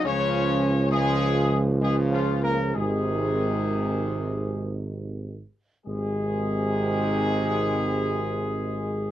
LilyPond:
<<
  \new Staff \with { instrumentName = "Trumpet section" } { \time 3/4 \key aes \major \tempo 4 = 58 des''4 aes'4 \tuplet 3/2 { aes'8 f'8 bes'8 } | aes'2 r4 | aes'2. | }
  \new Staff \with { instrumentName = "French horn section" } { \clef bass \time 3/4 \key aes \major des'4 aes4 \tuplet 3/2 { aes8 f8 bes8 } | aes2 r4 | aes2. | }
  \new Staff \with { instrumentName = "Trombone section" } { \clef bass \time 3/4 \key aes \major <des f>4 <des f>4 <des f>4 | <c ees>2~ <c ees>8 r8 | <c ees>2. | }
  \new Staff \with { instrumentName = "Tuba" } { \clef bass \time 3/4 \key aes \major des,2. | aes,,2~ aes,,8 r8 | aes,,2. | }
>>